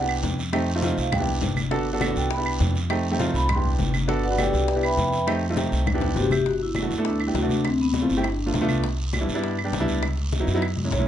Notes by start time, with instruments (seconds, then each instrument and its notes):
Already playing: upright bass C2
0.01 grand piano B3 D4 E4 G4
0.08 high bongo, high conga, claves
0.23 upright bass F2, high bongo, low bongo, high conga, short guiro
0.39 high bongo, short guiro
0.53 grand piano A3 C4 D#4 G4, high bongo, high conga, long guiro, claves
0.68 high conga
0.75 grand piano A3 C4 D#4 F4
0.82 grand piano A3 C4 D#4 F4, high bongo, high conga, short guiro
0.97 upright bass C2, vibraphone F5, high bongo, high conga, short guiro
1.12 vibraphone G5, high bongo, high conga, low conga, long guiro, claves
1.19 grand piano B3 D4 E4 G4
1.27 high bongo, high conga
1.41 upright bass G1, high bongo, low bongo, high conga, short guiro
1.56 high bongo, high conga, short guiro, claves
1.71 grand piano B3 D4 F#4 A4, high bongo, high conga, long guiro
1.86 high conga
1.93 grand piano B3 D4 F#4 A4
2.00 grand piano B3 D4 F#4 A4, high bongo, high conga, short guiro, claves
2.16 upright bass C2, vibraphone G5, high bongo, high conga, short guiro
2.31 vibraphone B5, high bongo, high conga, long guiro
2.37 grand piano B3 D4 E4 G4
2.45 high bongo, high conga, claves
2.60 upright bass F2, high bongo, low bongo, high conga, short guiro
2.75 high bongo, short guiro
2.90 grand piano A3 C4 D#4 G4, high bongo, high conga, long guiro, claves
3.05 high conga
3.11 grand piano A3 C4 D#4 G4
3.19 grand piano A3 C4 D#4 F4, high bongo, high conga, short guiro
3.34 upright bass C2, vibraphone B5, high bongo, high conga, short guiro
3.49 vibraphone C6, high bongo, high conga, low conga, long guiro, claves
3.56 grand piano B3 D4 E4 G4
3.64 high bongo, high conga, low conga
3.79 upright bass G1, high bongo, low bongo, high conga, short guiro
3.94 high bongo, high conga, short guiro, claves
4.07 grand piano B3 D4 F#4 A4, high bongo, high conga, long guiro
4.24 vibraphone F#4 B4 D5 F#5, high conga
4.30 grand piano B3 D4 F#4 B4
4.38 grand piano B3 D4 F#4 A4, vibraphone G4 B4 D5 G5, high bongo, high conga, short guiro, claves
4.53 upright bass C2, high bongo, high conga, short guiro
4.68 high bongo, high conga, long guiro
4.75 grand piano B3 D4 E4 G4
4.83 vibraphone B4 E5 G5 B5, high bongo, high conga, claves
4.97 upright bass F2, high bongo, low bongo, high conga, short guiro
5.12 high bongo, short guiro
5.27 grand piano A3 C4 D#4 G4, high bongo, high conga, long guiro, claves
5.42 high conga
5.49 grand piano A3 C4 D#4 F4
5.57 grand piano A3 C4 D#4 G4, high bongo, high conga, short guiro
5.71 upright bass C2, high conga, short guiro
5.86 low bongo, high conga, low conga, long guiro, claves
5.94 grand piano B3 D4 E4 G4
6.01 low bongo, high conga, low conga
6.15 upright bass G1, vibraphone F#4, grand piano C5, low bongo, high conga, short guiro
6.19 vibraphone G4
6.30 vibraphone G4, grand piano E5, low bongo, high conga, short guiro, claves
6.45 vibraphone F#4, high bongo, high conga, long guiro
6.61 vibraphone E4, high conga
6.75 high bongo, high conga, short guiro, claves
6.82 grand piano A3 B3 D4 F#4
6.90 upright bass D2, high bongo, short guiro
6.98 grand piano A3 B3 D4 A4
7.05 vibraphone D4, high bongo, high conga, long guiro
7.20 vibraphone E4, high bongo, high conga, claves
7.27 grand piano A3 B3 D4 G4
7.35 upright bass D2, vibraphone F#4, high bongo, low bongo, high conga, short guiro
7.42 grand piano A3 B3 D4 F#4
7.49 vibraphone D4, high bongo, high conga, short guiro
7.64 vibraphone C4, high bongo, high conga, long guiro, claves
7.79 vibraphone B3, high bongo, high conga
7.94 vibraphone C4, high bongo, high conga, short guiro
8.01 grand piano A3 C4 E4 F4
8.09 upright bass G1, vibraphone E4, high conga, short guiro
8.17 grand piano A3 C4 E4 G4
8.24 vibraphone D4, high bongo, high conga, long guiro, claves
8.39 high bongo, high conga
8.46 grand piano A3 B3 D4 F4
8.54 upright bass C2, high bongo, low bongo, high conga, short guiro
8.61 grand piano A3 B3 D4 F4
8.69 high bongo, high conga, short guiro, claves
8.84 high bongo, high conga, long guiro
8.99 high conga
9.13 high bongo, high conga, short guiro, claves
9.20 grand piano G3 B3 D4 E4
9.28 upright bass G2, high bongo, short guiro
9.35 grand piano G3 B3 D4 E4
9.43 high bongo, high conga, long guiro
9.58 high bongo, high conga, claves
9.64 grand piano G3 B3 D4 G4
9.73 upright bass C#2, high bongo, low bongo, high conga, short guiro
9.80 grand piano G3 B3 D4 E4
9.88 high bongo, high conga, short guiro
10.03 high bongo, high conga, long guiro, claves
10.18 high bongo, high conga
10.32 high bongo, high conga, short guiro
10.40 grand piano F#3 B3 D#4 E4
10.47 upright bass F#2, high conga, short guiro
10.54 grand piano F#3 B3 D#4 E4
10.62 high bongo, high conga, long guiro, claves
10.77 high bongo, high conga
10.84 grand piano G#3 A#3 C#4 E4
10.91 upright bass B1, vibraphone C#5, high bongo, low bongo, low conga, short guiro
10.99 grand piano G#3 A#3 C#4 E4